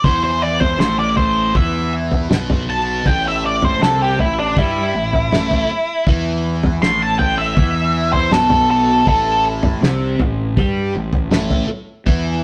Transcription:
0.04 E2 E3 E4 C5, kick, floor tom
0.24 C5
0.42 D5
0.60 C5, floor tom, mid tom
0.79 A1 A2 A3 C5, snare
0.99 D5
1.17 C5, floor tom
1.55 E2 E3 E4 E5, kick, floor tom
2.12 floor tom
2.31 B1 B2 B3, snare, mid tom
2.50 floor tom, mid tom
2.70 A5
3.06 A1 A2 A3 G5, kick, floor tom
3.28 E5
3.46 D5
3.62 C5, floor tom, mid tom
3.81 C2 C3 C4 A4, snare
4.02 G4
4.19 A1 A2 E4, floor tom
4.39 D4
4.56 G2 G3 E4 G4, kick, floor tom
4.95 A1 A2
5.13 floor tom
5.32 A1 A2 A3, snare, mid tom
5.51 floor tom
5.69 muted fingered electric bass stroke, muted distorted electric guitar stroke
6.07 E2 E3 E4, kick, floor tom
6.63 floor tom, mid tom
6.82 A1 A2 A3 C6, snare
7.02 A5
7.19 G5, floor tom
7.38 E5
7.57 E2 E3 E4, kick, floor tom
8.13 C5, floor tom
8.31 B1 B2 B3 A4, snare, mid tom
8.50 floor tom, mid tom
8.71 A4
9.06 A1 A2 A3 A4, kick, floor tom
9.63 floor tom, mid tom
9.81 C2 C3 C4, snare
10.19 A1 A2, floor tom
10.57 G2 G3 G4, kick, floor tom
10.95 A1 A2
11.13 floor tom
11.31 A1 A2 A3, snare, mid tom
11.50 floor tom
11.69 muted distorted electric guitar stroke, muted fingered electric bass stroke
12.06 E2 E3 E4, kick, floor tom

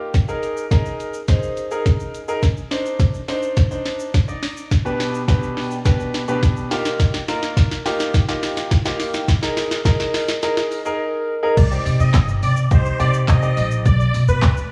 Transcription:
Already playing: A#3 D#4 F4 G4
0.14 kick, snare, closed hi-hat, shaker
0.28 D#4 G#4 A#4, shaker
0.43 closed hi-hat, shaker
0.57 shaker
0.71 D#4 G#4 A#4, kick, snare, closed hi-hat, shaker
0.86 shaker
1.00 closed hi-hat, shaker
1.14 shaker
1.28 D#4 G#4 C5, kick, snare, closed hi-hat, shaker
1.43 shaker
1.57 closed hi-hat, shaker
1.71 D#4 G#4 A#4, shaker
1.86 kick, snare, closed hi-hat, shaker
2.00 shaker
2.15 closed hi-hat, shaker
2.28 D#4 G#4 A#4, shaker
2.43 kick, snare, closed hi-hat, shaker
2.57 shaker
2.71 D4 D#4 C5, snare, open hi-hat, shaker
2.86 shaker
3.00 kick, snare, closed hi-hat, shaker
3.14 shaker
3.28 D4 D#4 C5, snare, open hi-hat, shaker
3.43 shaker
3.57 kick, snare, closed hi-hat, shaker
3.71 D4 D#4 C5, shaker
3.86 snare, open hi-hat, shaker
4.00 shaker
4.14 kick, snare, closed hi-hat, shaker
4.28 D#4 D5 D#5, shaker
4.43 snare, open hi-hat, shaker
4.57 shaker
4.71 kick, snare, closed hi-hat, shaker
4.85 B2 D4 G4 B4, shaker
5.00 snare, open hi-hat, shaker
5.14 shaker
5.28 B2 D4 G4 B4, kick, snare, closed hi-hat, shaker
5.43 shaker
5.57 snare, open hi-hat, shaker
5.71 shaker
5.85 B2 D4 G4 B4, kick, snare, closed hi-hat, shaker
6.00 shaker
6.14 snare, open hi-hat, shaker
6.28 B2 D4 G4 B4, shaker
6.43 kick, snare, closed hi-hat, shaker
6.57 shaker
6.71 A#3 D#4 F4 G4, snare, open hi-hat, shaker
6.85 snare, shaker
7.00 kick, snare, closed hi-hat, shaker
7.14 snare, shaker
7.28 A#3 D#4 F4 A#4, snare, open hi-hat, shaker
7.43 snare, shaker
7.57 kick, snare, closed hi-hat, shaker
7.71 snare, shaker
7.85 A#3 D#4 F4 G4, snare, open hi-hat, shaker
8.00 snare, shaker
8.14 kick, snare, closed hi-hat, shaker
8.28 A#3 D#4 F4 G4, snare, shaker
8.43 snare, open hi-hat, shaker
8.57 snare, shaker
8.71 kick, snare, closed hi-hat, shaker
8.85 A#3 D#4 F4 G4, snare, shaker
9.00 snare, open hi-hat, shaker
9.14 snare, shaker
9.28 kick, snare, closed hi-hat, shaker
9.42 D#4 G#4 A#4, snare, shaker
9.57 snare, open hi-hat, shaker
9.71 snare, shaker
9.85 D#4 G#4 A#4, kick, snare, closed hi-hat, shaker
10.00 snare, shaker
10.14 snare, open hi-hat, shaker
10.28 snare, shaker
10.42 D#4 G#4 A#4, snare, closed hi-hat, shaker
10.57 snare, shaker
10.71 open hi-hat, shaker
10.85 D#4 G#4 A#4, shaker
11.43 D#4 G#4 A#4
11.57 C2 D5, kick, closed hi-hat, crash, shaker
11.71 D#4 G4 C5 D5, shaker
11.86 C3, open hi-hat, shaker
12.00 C3 D#5, shaker
12.14 G1, kick, snare, clap, closed hi-hat, shaker
12.28 shaker
12.43 C3 D5, open hi-hat, shaker
12.57 shaker
12.71 C2 D#4 G4 C5 D#5, kick, closed hi-hat, shaker
12.86 shaker
12.99 C3 D#4 G4 C5 D5, open hi-hat, shaker
13.14 shaker
13.28 C3 D#4 G4 C5 D5 D#5, kick, snare, clap, closed hi-hat, shaker
13.42 D#4 G4 C5 D5, shaker
13.57 A#1, open hi-hat, shaker
13.71 shaker
13.86 B1 D5, kick, closed hi-hat, shaker
14.00 shaker
14.14 B2, open hi-hat, shaker
14.28 B2 B4, shaker
14.42 D2, kick, snare, clap, closed hi-hat, shaker
14.57 shaker

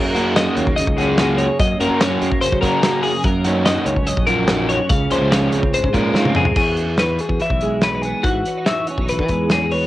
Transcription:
Already playing: F#2 F#3 A#3 A#4
0.00 D#4 G#4
0.15 F#3 A#3 C#4 F#4, closed hi-hat
0.36 F#3 A#3 C#4 F#4 D#5, snare, closed hi-hat
0.56 D#2 A#3 C#5, closed hi-hat
0.67 kick
0.76 C#3 D#5, closed hi-hat
0.87 C#2, kick
0.97 F#3 A#3 C#4 F#4 G#4, closed hi-hat
1.10 D#4
1.18 F#3 A#3 C#4 F#4, snare, closed hi-hat
1.38 G#4 C#5, closed hi-hat
1.59 F#2 D#5, kick, closed hi-hat
1.80 F#2 F#3 A#3 C#4 F#4 A#4, closed hi-hat
1.90 F#2
2.01 F#3 A#3 C#4 F#4 C#5, snare, closed hi-hat
2.22 F#2 A#3, closed hi-hat
2.32 kick
2.42 C#3 C5, closed hi-hat
2.52 F#3, kick
2.61 F#3 A#3 C#4 F#4 A#4, kick, closed hi-hat
2.74 D#4
2.83 F#3 A#3 C#4 F#4, snare, closed hi-hat
3.03 G#4, open hi-hat
3.24 F#2 A#4, kick, closed hi-hat
3.45 F#3 A#3 C#4 D#4 F#4, closed hi-hat
3.66 F#3 A#3 D#4 F#4 D#5, snare, closed hi-hat
3.86 C#2 C#4 C#5, closed hi-hat
3.97 kick
4.07 F#2 D#5, closed hi-hat
4.17 A#1, kick
4.27 F#3 A#3 D#4 F4 F#4 A#4, closed hi-hat
4.48 F#3 A#3 C#4 D#4 F#4, snare, closed hi-hat
4.69 F#4 C#5, closed hi-hat
4.89 C#2 C#3 F5, kick, closed hi-hat
5.10 C#2 F3 G#3 A#3 C#4 F4 C5, closed hi-hat
5.21 C#2 C4
5.31 F3 G#3 C#4 F4 C#5, snare, closed hi-hat
5.52 C#2 C4, closed hi-hat
5.63 kick
5.74 G#2 C5, closed hi-hat
5.83 C#3, kick
5.93 A#2 F3 G#3 C#4 F4 A#4, kick, closed hi-hat
6.14 G#2 F3 G#3 A#3 C#4 F4, snare
6.25 C4, high tom
6.35 F2 G#4, mid tom
6.39 A#4
6.45 floor tom
6.56 E2 E3 F#4 G#4, kick, crash
6.77 C#4, closed hi-hat
6.89 D#4
6.98 F#4 B4, snare, closed hi-hat
7.19 G#4, closed hi-hat
7.29 E2, kick
7.40 E3 E5, closed hi-hat
7.50 B1, kick
7.61 G#3, closed hi-hat
7.82 C#4 B4, snare, closed hi-hat
7.95 D#4
8.02 B3 G#4, closed hi-hat
8.23 G#2 E3 F#4, kick, closed hi-hat
8.45 C#4, closed hi-hat
8.57 D#4
8.66 F#4 E5, snare, closed hi-hat
8.87 C#4 C#5, closed hi-hat
8.98 B1 D#4, kick
9.08 E3 B4, closed hi-hat
9.19 E3, kick
9.28 E2 G#3, kick, closed hi-hat
9.49 C#4 G#4, snare, closed hi-hat
9.63 D#4
9.71 B3 C#5, open hi-hat

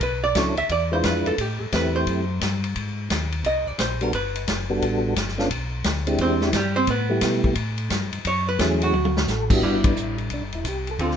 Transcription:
0.01 B1 B4, kick, ride
0.24 D5
0.35 C#2 F#3 C#4 D4 E4 A4 C#5, kick, snare, hi-hat pedal, ride
0.57 C#2 E5, ride
0.69 E2 D5, kick, ride
0.92 G#3 D4 E4 F4 B4 C5
1.03 F2 B4, kick, snare, hi-hat pedal, ride
1.26 F2 A4, ride
1.38 A2 G4, kick, ride
1.61 A2 A4
1.72 E2 A3 C4 E4 G4 B4, kick, snare, hi-hat pedal, ride
1.96 C5
2.07 F#2, kick, ride
2.41 G2, kick, snare, hi-hat pedal, ride
2.64 ride
2.76 G#2, kick, ride
3.10 D#2, kick, snare, hi-hat pedal, ride
3.32 ride
3.44 C2 D#5, kick, ride
3.67 C2 D5
3.78 A#1 C5, kick, snare, hi-hat pedal, ride
4.01 G3 B3 D4 F#4 A4 A#4, ride
4.13 G1 B4, kick, ride
4.35 ride
4.48 F#1, kick, snare, hi-hat pedal, ride
4.70 G3 B3 D4 F#4 A4
4.82 A1, kick, ride
5.16 G1, kick, snare, hi-hat pedal, ride
5.28 snare
5.38 B3 C#4 D4 F4 A4, snare
5.50 B1, kick, ride
5.84 D2, kick, snare, hi-hat pedal, ride
6.07 G#3 C4 D4 E4 G4, ride
6.18 E2 C4 C5, kick, ride
6.41 E3 E4, snare
6.53 G2 G3 G4, kick, snare, hi-hat pedal, ride
6.76 C4 C5
6.87 A2 B3 B4, kick, ride
7.10 G3 A3 B3 E4 G4
7.21 B2, kick, snare, hi-hat pedal, ride
7.44 kick
7.55 A2, kick, ride
7.78 ride
7.90 G2, kick, snare, hi-hat pedal, ride
8.13 G2, ride
8.25 F#2 C#5, kick, ride
8.49 B4
8.59 E2 F#3 A3 C#4 E4 G#4, kick, snare, hi-hat pedal, ride
8.82 F#4, ride
8.93 D2, high tom
9.05 high tom
9.17 snare
9.28 A1 A4, snare, hi-hat pedal
9.50 G3 B3 D4 E4 F#4 G4, kick, crash
9.62 G1 G3 D4 E4 F#4 B4, kick
9.84 E4, kick, ride
9.96 A1, hi-hat pedal
10.18 ride
10.30 B1 D4, kick, ride
10.42 G1
10.52 E1 E4, ride
10.64 C2 G4, kick, hi-hat pedal, ride
10.87 A4, ride
10.99 D2 D3 C4 F4 A4, kick, ride
11.11 snare

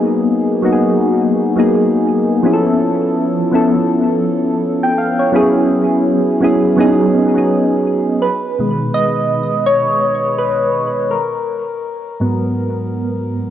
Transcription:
Already playing: F#3 A#3 B3 D#4 G#4
0.62 F#3 A#3 B3 D#4 F#4
0.73 G#4
1.56 F#3 A#3 B3 D#4 G#4
2.43 F3 B3 C#4 E4 G#4
2.53 A4
3.51 F3 B3 C#4 E4 A4
4.83 G5
4.98 F5
5.19 C#5
5.32 F#3 B3 C#4 E4 G#4
6.40 F#3 B3 C#4 E4 G#4
6.77 F#3 B3 C#4 D#4 G#4
7.34 F#3 B3 C#4 D#4 G#4
8.22 B4
8.59 B2 D#3 G#3
8.94 D#5
9.66 C#5
10.38 B4
11.11 A#4
12.20 G#2 F#3 B3

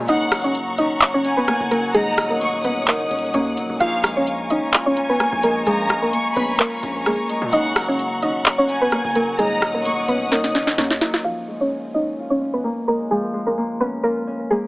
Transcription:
Already playing: F3 G#3 A#3 C#4 F4
0.08 F#1 C#3 D#4 D#5 F#5 A#5 C#6, closed hi-hat
0.32 F#3, cross-stick, open hi-hat
0.44 C#4 C#5
0.55 closed hi-hat
0.78 C#4 D#4 D#5, closed hi-hat
1.01 C#5, clap, closed hi-hat
1.14 C#4 C#5
1.25 C#4 G#5, closed hi-hat
1.37 B3 B4
1.48 A#3, cross-stick, closed hi-hat
1.60 F#1
1.71 F#3 A#3 A#4, closed hi-hat
1.94 D#1 D#3 G#3 G#4 C#5 A#5 D#6, closed hi-hat
2.17 D#1 F#3, cross-stick, open hi-hat
2.30 A#3 A#4
2.41 F1 A#3 C#6, closed hi-hat
2.53 D#1
2.64 D#1 B3 C#4 B4 F#5, closed hi-hat
2.88 F#1 A#3 D#4 A#4, clap, closed hi-hat
3.10 D#1 C#4, closed hi-hat
3.19 closed hi-hat
3.26 closed hi-hat
3.34 D#2 A#3 C#4 C#5, closed hi-hat
3.57 C#1 F#3, closed hi-hat
3.70 D#1
3.80 A#1 F3 F4 F5 G#5 A#5 C#6, closed hi-hat
4.04 G#3, cross-stick, open hi-hat
4.17 C#4 C#5
4.27 closed hi-hat
4.50 C#4 D#4 D#5, closed hi-hat
4.73 F4, clap, closed hi-hat
4.86 C#4 C#5
4.97 C#4 G#5, closed hi-hat
5.09 B3 B4
5.20 A#3, cross-stick, closed hi-hat
5.32 A#1
5.43 G#3 A#3 A#4, closed hi-hat
5.66 A#1 F3 G#3 G#4 A#5, closed hi-hat
5.89 A#1 G#3, cross-stick, closed hi-hat
6.02 A#3 A#4
6.13 A#3 C#6, closed hi-hat
6.36 A#1 B3 C#4 B4 B5, closed hi-hat
6.59 A#3 F4 A#4, clap, closed hi-hat
6.83 A#1 C#4, closed hi-hat
7.06 G#3 A#3 G#4, cross-stick, closed hi-hat
7.29 G#3, closed hi-hat
7.42 A#2
7.53 F#1 C#3 D#4 D#5 F#5, closed hi-hat
7.76 F#3, cross-stick, open hi-hat
7.88 C#4 C#5
7.99 closed hi-hat
8.22 C#4 D#4 D#5, closed hi-hat
8.46 C#5, clap, closed hi-hat
8.58 C#4 C#5
8.69 C#4 G#5, closed hi-hat
8.81 B3 B4
8.92 A#3, cross-stick, closed hi-hat
9.04 F#1
9.15 F#3 A#3 A#4, closed hi-hat
9.38 D#1 D#3 G#3 G#4 C#5 F#5 A#5 D#6, closed hi-hat
9.62 D#1 F#3, cross-stick, open hi-hat
9.74 A#3 A#4
9.85 F1 A#3 C#6, closed hi-hat
9.97 D#1
10.08 D#1 B3 C#4 B4 F#5, closed hi-hat
10.32 A#3 D#4 A#4, snare, closed hi-hat
10.44 F#1, snare
10.54 C#4, snare, closed hi-hat
10.63 closed hi-hat
10.67 snare, closed hi-hat
10.78 D#2 A#3 C#4 C#5, snare, closed hi-hat
10.91 snare
11.01 F#3, snare, closed hi-hat
11.14 snare
11.24 F3 F4 F5
11.48 G#3
11.61 C#4 C#5
11.94 C#4 D#4 D#5
12.19 F4
12.30 C#4 C#5
12.41 C#4
12.54 B3 B4
12.64 A#3
12.87 G#3 A#3 A#4
13.11 F3 G#3 G#4
13.34 G#3
13.47 A#3 A#4
13.58 A#3
13.80 B3 C#4 B4
14.03 A#3 F4 A#4
14.27 C#4
14.50 G#3 A#3 G#4

